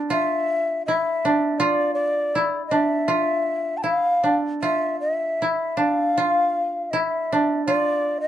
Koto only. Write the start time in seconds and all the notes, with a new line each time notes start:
Already playing: D4 E4
0.10 F4
0.88 E4
1.25 D4
1.60 F4
2.35 E4
2.71 D4
3.08 F4
3.84 E4
4.24 D4
4.62 F4
5.42 E4
5.77 D4
6.18 F4
6.93 E4
7.32 D4
7.68 F4